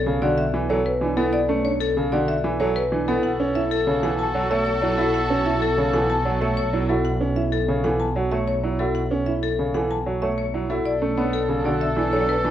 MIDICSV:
0, 0, Header, 1, 7, 480
1, 0, Start_track
1, 0, Key_signature, 2, "minor"
1, 0, Tempo, 317460
1, 2017, Time_signature, 6, 2, 24, 8
1, 18908, End_track
2, 0, Start_track
2, 0, Title_t, "Marimba"
2, 0, Program_c, 0, 12
2, 0, Note_on_c, 0, 69, 93
2, 167, Note_off_c, 0, 69, 0
2, 332, Note_on_c, 0, 74, 77
2, 568, Note_on_c, 0, 76, 89
2, 647, Note_off_c, 0, 74, 0
2, 886, Note_off_c, 0, 76, 0
2, 1057, Note_on_c, 0, 73, 73
2, 1296, Note_on_c, 0, 71, 93
2, 1369, Note_off_c, 0, 73, 0
2, 1609, Note_off_c, 0, 71, 0
2, 1769, Note_on_c, 0, 69, 76
2, 2008, Note_on_c, 0, 74, 95
2, 2086, Note_off_c, 0, 69, 0
2, 2326, Note_off_c, 0, 74, 0
2, 2491, Note_on_c, 0, 73, 80
2, 2729, Note_on_c, 0, 69, 100
2, 2807, Note_off_c, 0, 73, 0
2, 3046, Note_off_c, 0, 69, 0
2, 3207, Note_on_c, 0, 74, 80
2, 3451, Note_on_c, 0, 76, 98
2, 3526, Note_off_c, 0, 74, 0
2, 3767, Note_off_c, 0, 76, 0
2, 3928, Note_on_c, 0, 73, 82
2, 4170, Note_on_c, 0, 71, 92
2, 4246, Note_off_c, 0, 73, 0
2, 4487, Note_off_c, 0, 71, 0
2, 4655, Note_on_c, 0, 69, 80
2, 4885, Note_on_c, 0, 78, 91
2, 4968, Note_off_c, 0, 69, 0
2, 5205, Note_off_c, 0, 78, 0
2, 5373, Note_on_c, 0, 76, 81
2, 5615, Note_on_c, 0, 69, 99
2, 5688, Note_off_c, 0, 76, 0
2, 5928, Note_off_c, 0, 69, 0
2, 6096, Note_on_c, 0, 78, 78
2, 6333, Note_on_c, 0, 81, 98
2, 6409, Note_off_c, 0, 78, 0
2, 6648, Note_off_c, 0, 81, 0
2, 6815, Note_on_c, 0, 76, 76
2, 7047, Note_on_c, 0, 73, 90
2, 7128, Note_off_c, 0, 76, 0
2, 7366, Note_off_c, 0, 73, 0
2, 7532, Note_on_c, 0, 69, 77
2, 7775, Note_on_c, 0, 78, 94
2, 7847, Note_off_c, 0, 69, 0
2, 8088, Note_off_c, 0, 78, 0
2, 8254, Note_on_c, 0, 76, 75
2, 8497, Note_on_c, 0, 69, 97
2, 8568, Note_off_c, 0, 76, 0
2, 8809, Note_off_c, 0, 69, 0
2, 8974, Note_on_c, 0, 78, 76
2, 9221, Note_on_c, 0, 81, 96
2, 9288, Note_off_c, 0, 78, 0
2, 9531, Note_off_c, 0, 81, 0
2, 9701, Note_on_c, 0, 76, 75
2, 9935, Note_on_c, 0, 73, 86
2, 10011, Note_off_c, 0, 76, 0
2, 10248, Note_off_c, 0, 73, 0
2, 10415, Note_on_c, 0, 69, 72
2, 10655, Note_on_c, 0, 78, 86
2, 10728, Note_off_c, 0, 69, 0
2, 10968, Note_off_c, 0, 78, 0
2, 11135, Note_on_c, 0, 76, 72
2, 11376, Note_on_c, 0, 69, 89
2, 11448, Note_off_c, 0, 76, 0
2, 11689, Note_off_c, 0, 69, 0
2, 11855, Note_on_c, 0, 78, 68
2, 12093, Note_on_c, 0, 81, 86
2, 12168, Note_off_c, 0, 78, 0
2, 12407, Note_off_c, 0, 81, 0
2, 12574, Note_on_c, 0, 76, 68
2, 12815, Note_on_c, 0, 73, 84
2, 12888, Note_off_c, 0, 76, 0
2, 13128, Note_off_c, 0, 73, 0
2, 13293, Note_on_c, 0, 69, 68
2, 13530, Note_on_c, 0, 78, 81
2, 13608, Note_off_c, 0, 69, 0
2, 13847, Note_off_c, 0, 78, 0
2, 14008, Note_on_c, 0, 76, 73
2, 14257, Note_on_c, 0, 69, 82
2, 14326, Note_off_c, 0, 76, 0
2, 14569, Note_off_c, 0, 69, 0
2, 14735, Note_on_c, 0, 78, 66
2, 14983, Note_on_c, 0, 81, 82
2, 15048, Note_off_c, 0, 78, 0
2, 15291, Note_off_c, 0, 81, 0
2, 15452, Note_on_c, 0, 76, 65
2, 15693, Note_on_c, 0, 73, 76
2, 15767, Note_off_c, 0, 76, 0
2, 16008, Note_off_c, 0, 73, 0
2, 16177, Note_on_c, 0, 69, 69
2, 16413, Note_on_c, 0, 74, 79
2, 16489, Note_off_c, 0, 69, 0
2, 16728, Note_off_c, 0, 74, 0
2, 16897, Note_on_c, 0, 73, 71
2, 17134, Note_on_c, 0, 69, 86
2, 17209, Note_off_c, 0, 73, 0
2, 17448, Note_off_c, 0, 69, 0
2, 17621, Note_on_c, 0, 74, 65
2, 17861, Note_on_c, 0, 76, 89
2, 17930, Note_off_c, 0, 74, 0
2, 18170, Note_off_c, 0, 76, 0
2, 18336, Note_on_c, 0, 73, 67
2, 18579, Note_on_c, 0, 71, 78
2, 18649, Note_off_c, 0, 73, 0
2, 18890, Note_off_c, 0, 71, 0
2, 18908, End_track
3, 0, Start_track
3, 0, Title_t, "Oboe"
3, 0, Program_c, 1, 68
3, 4897, Note_on_c, 1, 69, 84
3, 10356, Note_off_c, 1, 69, 0
3, 16417, Note_on_c, 1, 69, 75
3, 18908, Note_off_c, 1, 69, 0
3, 18908, End_track
4, 0, Start_track
4, 0, Title_t, "Violin section"
4, 0, Program_c, 2, 48
4, 4895, Note_on_c, 2, 66, 74
4, 4896, Note_on_c, 2, 69, 80
4, 10356, Note_off_c, 2, 66, 0
4, 10356, Note_off_c, 2, 69, 0
4, 16415, Note_on_c, 2, 62, 65
4, 16416, Note_on_c, 2, 69, 68
4, 18908, Note_off_c, 2, 62, 0
4, 18908, Note_off_c, 2, 69, 0
4, 18908, End_track
5, 0, Start_track
5, 0, Title_t, "Grand piano"
5, 0, Program_c, 3, 0
5, 96, Note_on_c, 3, 69, 69
5, 334, Note_on_c, 3, 66, 87
5, 409, Note_off_c, 3, 69, 0
5, 648, Note_off_c, 3, 66, 0
5, 814, Note_on_c, 3, 64, 71
5, 1052, Note_on_c, 3, 69, 95
5, 1128, Note_off_c, 3, 64, 0
5, 1367, Note_off_c, 3, 69, 0
5, 1533, Note_on_c, 3, 62, 77
5, 1769, Note_on_c, 3, 64, 91
5, 1848, Note_off_c, 3, 62, 0
5, 2086, Note_off_c, 3, 64, 0
5, 2250, Note_on_c, 3, 61, 83
5, 2489, Note_on_c, 3, 62, 92
5, 2566, Note_off_c, 3, 61, 0
5, 2806, Note_off_c, 3, 62, 0
5, 2968, Note_on_c, 3, 69, 78
5, 3210, Note_on_c, 3, 66, 89
5, 3286, Note_off_c, 3, 69, 0
5, 3527, Note_off_c, 3, 66, 0
5, 3690, Note_on_c, 3, 64, 79
5, 3931, Note_on_c, 3, 69, 98
5, 4007, Note_off_c, 3, 64, 0
5, 4247, Note_off_c, 3, 69, 0
5, 4412, Note_on_c, 3, 62, 78
5, 4654, Note_on_c, 3, 64, 88
5, 4727, Note_off_c, 3, 62, 0
5, 4968, Note_off_c, 3, 64, 0
5, 5135, Note_on_c, 3, 61, 81
5, 5374, Note_on_c, 3, 64, 96
5, 5448, Note_off_c, 3, 61, 0
5, 5688, Note_off_c, 3, 64, 0
5, 5852, Note_on_c, 3, 73, 72
5, 6087, Note_on_c, 3, 69, 89
5, 6167, Note_off_c, 3, 73, 0
5, 6406, Note_off_c, 3, 69, 0
5, 6569, Note_on_c, 3, 66, 78
5, 6811, Note_on_c, 3, 73, 100
5, 6886, Note_off_c, 3, 66, 0
5, 7127, Note_off_c, 3, 73, 0
5, 7289, Note_on_c, 3, 64, 77
5, 7532, Note_on_c, 3, 66, 87
5, 7606, Note_off_c, 3, 64, 0
5, 7847, Note_off_c, 3, 66, 0
5, 8013, Note_on_c, 3, 61, 79
5, 8251, Note_on_c, 3, 64, 90
5, 8328, Note_off_c, 3, 61, 0
5, 8567, Note_off_c, 3, 64, 0
5, 8733, Note_on_c, 3, 73, 77
5, 8972, Note_on_c, 3, 69, 80
5, 9048, Note_off_c, 3, 73, 0
5, 9287, Note_off_c, 3, 69, 0
5, 9454, Note_on_c, 3, 66, 78
5, 9697, Note_on_c, 3, 73, 90
5, 9768, Note_off_c, 3, 66, 0
5, 10009, Note_off_c, 3, 73, 0
5, 10171, Note_on_c, 3, 64, 75
5, 10413, Note_on_c, 3, 66, 83
5, 10487, Note_off_c, 3, 64, 0
5, 10728, Note_off_c, 3, 66, 0
5, 10894, Note_on_c, 3, 61, 77
5, 11134, Note_on_c, 3, 64, 83
5, 11208, Note_off_c, 3, 61, 0
5, 11448, Note_off_c, 3, 64, 0
5, 11615, Note_on_c, 3, 73, 73
5, 11858, Note_on_c, 3, 69, 76
5, 11928, Note_off_c, 3, 73, 0
5, 12169, Note_off_c, 3, 69, 0
5, 12339, Note_on_c, 3, 66, 70
5, 12578, Note_on_c, 3, 73, 88
5, 12650, Note_off_c, 3, 66, 0
5, 12890, Note_off_c, 3, 73, 0
5, 13057, Note_on_c, 3, 64, 64
5, 13298, Note_on_c, 3, 66, 77
5, 13369, Note_off_c, 3, 64, 0
5, 13610, Note_off_c, 3, 66, 0
5, 13781, Note_on_c, 3, 61, 69
5, 14017, Note_on_c, 3, 64, 79
5, 14090, Note_off_c, 3, 61, 0
5, 14329, Note_off_c, 3, 64, 0
5, 14501, Note_on_c, 3, 73, 67
5, 14742, Note_on_c, 3, 69, 77
5, 14810, Note_off_c, 3, 73, 0
5, 15051, Note_off_c, 3, 69, 0
5, 15220, Note_on_c, 3, 66, 68
5, 15454, Note_on_c, 3, 73, 84
5, 15530, Note_off_c, 3, 66, 0
5, 15768, Note_off_c, 3, 73, 0
5, 15934, Note_on_c, 3, 64, 65
5, 16175, Note_on_c, 3, 66, 76
5, 16248, Note_off_c, 3, 64, 0
5, 16488, Note_off_c, 3, 66, 0
5, 16657, Note_on_c, 3, 61, 71
5, 16896, Note_on_c, 3, 62, 76
5, 16969, Note_off_c, 3, 61, 0
5, 17209, Note_off_c, 3, 62, 0
5, 17377, Note_on_c, 3, 69, 67
5, 17620, Note_on_c, 3, 66, 79
5, 17689, Note_off_c, 3, 69, 0
5, 17930, Note_off_c, 3, 66, 0
5, 18098, Note_on_c, 3, 64, 69
5, 18337, Note_on_c, 3, 69, 87
5, 18409, Note_off_c, 3, 64, 0
5, 18649, Note_off_c, 3, 69, 0
5, 18813, Note_on_c, 3, 62, 68
5, 18908, Note_off_c, 3, 62, 0
5, 18908, End_track
6, 0, Start_track
6, 0, Title_t, "Grand piano"
6, 0, Program_c, 4, 0
6, 94, Note_on_c, 4, 49, 78
6, 334, Note_on_c, 4, 50, 78
6, 408, Note_off_c, 4, 49, 0
6, 648, Note_off_c, 4, 50, 0
6, 810, Note_on_c, 4, 52, 77
6, 1046, Note_on_c, 4, 54, 76
6, 1126, Note_off_c, 4, 52, 0
6, 1365, Note_off_c, 4, 54, 0
6, 1529, Note_on_c, 4, 52, 73
6, 1766, Note_on_c, 4, 59, 77
6, 1846, Note_off_c, 4, 52, 0
6, 2085, Note_off_c, 4, 59, 0
6, 2251, Note_on_c, 4, 57, 77
6, 2567, Note_off_c, 4, 57, 0
6, 2975, Note_on_c, 4, 49, 77
6, 3214, Note_on_c, 4, 50, 79
6, 3288, Note_off_c, 4, 49, 0
6, 3528, Note_off_c, 4, 50, 0
6, 3690, Note_on_c, 4, 52, 80
6, 3932, Note_on_c, 4, 54, 84
6, 4007, Note_off_c, 4, 52, 0
6, 4247, Note_off_c, 4, 54, 0
6, 4412, Note_on_c, 4, 52, 73
6, 4655, Note_on_c, 4, 59, 78
6, 4727, Note_off_c, 4, 52, 0
6, 4968, Note_off_c, 4, 59, 0
6, 5136, Note_on_c, 4, 61, 79
6, 5449, Note_off_c, 4, 61, 0
6, 5848, Note_on_c, 4, 49, 76
6, 6095, Note_on_c, 4, 52, 77
6, 6166, Note_off_c, 4, 49, 0
6, 6408, Note_off_c, 4, 52, 0
6, 6568, Note_on_c, 4, 54, 77
6, 6809, Note_on_c, 4, 57, 79
6, 6886, Note_off_c, 4, 54, 0
6, 7126, Note_off_c, 4, 57, 0
6, 7288, Note_on_c, 4, 54, 76
6, 7531, Note_on_c, 4, 64, 78
6, 7606, Note_off_c, 4, 54, 0
6, 7847, Note_off_c, 4, 64, 0
6, 8018, Note_on_c, 4, 61, 75
6, 8329, Note_off_c, 4, 61, 0
6, 8741, Note_on_c, 4, 49, 75
6, 8974, Note_on_c, 4, 52, 73
6, 9051, Note_off_c, 4, 49, 0
6, 9288, Note_off_c, 4, 52, 0
6, 9453, Note_on_c, 4, 54, 69
6, 9693, Note_on_c, 4, 57, 75
6, 9768, Note_off_c, 4, 54, 0
6, 10007, Note_off_c, 4, 57, 0
6, 10177, Note_on_c, 4, 54, 72
6, 10420, Note_on_c, 4, 64, 71
6, 10489, Note_off_c, 4, 54, 0
6, 10730, Note_off_c, 4, 64, 0
6, 10896, Note_on_c, 4, 61, 67
6, 11209, Note_off_c, 4, 61, 0
6, 11621, Note_on_c, 4, 49, 75
6, 11858, Note_on_c, 4, 52, 73
6, 11931, Note_off_c, 4, 49, 0
6, 12169, Note_off_c, 4, 52, 0
6, 12337, Note_on_c, 4, 54, 70
6, 12577, Note_on_c, 4, 57, 69
6, 12649, Note_off_c, 4, 54, 0
6, 12889, Note_off_c, 4, 57, 0
6, 13054, Note_on_c, 4, 54, 67
6, 13296, Note_on_c, 4, 64, 70
6, 13368, Note_off_c, 4, 54, 0
6, 13609, Note_off_c, 4, 64, 0
6, 13776, Note_on_c, 4, 61, 71
6, 14089, Note_off_c, 4, 61, 0
6, 14499, Note_on_c, 4, 49, 65
6, 14737, Note_on_c, 4, 52, 67
6, 14810, Note_off_c, 4, 49, 0
6, 15049, Note_off_c, 4, 52, 0
6, 15217, Note_on_c, 4, 54, 66
6, 15456, Note_on_c, 4, 57, 67
6, 15529, Note_off_c, 4, 54, 0
6, 15769, Note_off_c, 4, 57, 0
6, 15937, Note_on_c, 4, 54, 64
6, 16176, Note_on_c, 4, 64, 70
6, 16249, Note_off_c, 4, 54, 0
6, 16489, Note_off_c, 4, 64, 0
6, 16659, Note_on_c, 4, 57, 66
6, 16897, Note_on_c, 4, 59, 71
6, 16970, Note_off_c, 4, 57, 0
6, 17209, Note_off_c, 4, 59, 0
6, 17369, Note_on_c, 4, 49, 73
6, 17612, Note_on_c, 4, 50, 68
6, 17686, Note_off_c, 4, 49, 0
6, 17927, Note_off_c, 4, 50, 0
6, 18091, Note_on_c, 4, 52, 69
6, 18337, Note_on_c, 4, 54, 70
6, 18407, Note_off_c, 4, 52, 0
6, 18649, Note_off_c, 4, 54, 0
6, 18813, Note_on_c, 4, 52, 68
6, 18908, Note_off_c, 4, 52, 0
6, 18908, End_track
7, 0, Start_track
7, 0, Title_t, "Double bass"
7, 0, Program_c, 5, 43
7, 0, Note_on_c, 5, 35, 66
7, 4739, Note_off_c, 5, 35, 0
7, 4890, Note_on_c, 5, 35, 76
7, 16257, Note_off_c, 5, 35, 0
7, 16412, Note_on_c, 5, 35, 70
7, 18908, Note_off_c, 5, 35, 0
7, 18908, End_track
0, 0, End_of_file